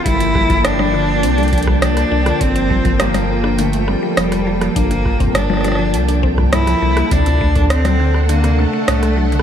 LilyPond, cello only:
\new Staff \with { instrumentName = "Cello" } { \time 4/4 \key g \dorian \tempo 4 = 102 e'4 d'2 d'4 | c'4 bes4 a8 g4. | bes4 d'4. r8 e'4 | d'4 c'4 bes8 a4. | }